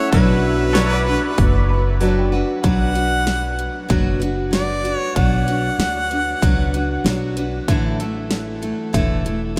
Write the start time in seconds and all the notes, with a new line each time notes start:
Already playing: A3 C#4 E4 A4 C#5
0.11 B1 B2 F#3 D4 F#4 B4, kick, open hi-hat
0.73 F#3 D4 F#4 A4 B4 C#5 D5, snare, open hi-hat
0.78 B4
0.94 D5
0.98 B4
1.07 D4 F#4 B4
1.38 F#1, kick, open hi-hat
1.69 B5
2.00 F#3 D4 F#4 B4 D5 A5, open hi-hat
2.17 G5
2.31 D4 F#4 B4 F#5
2.63 B1 B2 F#3 D4 F#4 B4 F#5, kick, closed hi-hat
2.94 D4 F#4 B4, closed hi-hat
3.27 snare, closed hi-hat
3.59 closed hi-hat
3.88 F#1 B2 F#3 D4 F#4 B4, kick, closed hi-hat
4.20 D4 F#4 B4, closed hi-hat
4.51 F#3 D4 F#4 B4 D5, snare, closed hi-hat
4.83 D4 F#4 B4, closed hi-hat
4.96 C#5
5.15 B1 B2 F#3 D4 F#4 B4 F#5, kick, closed hi-hat
5.46 D4 F#4 B4, closed hi-hat
5.79 D2, snare, closed hi-hat
6.10 D4 F#4 B4, closed hi-hat
6.42 C#2 B2 F#3 D4 F#4 B4, kick, closed hi-hat
6.73 D4 F#4 B4, closed hi-hat
7.04 B1 F#3 D4 F#4 B4, snare, closed hi-hat
7.36 D4 F#4 B4, closed hi-hat
7.68 A1 A2 D3 E3 A3 E4 A4, kick, closed hi-hat
8.00 E3 A3 E4 A4, closed hi-hat
8.31 snare, closed hi-hat
8.62 E3 A3 E4 A4, closed hi-hat
8.93 E1 A2 D3 E3 A3 E4 A4, kick, closed hi-hat
9.25 E3 A3 E4 A4, closed hi-hat
9.56 E3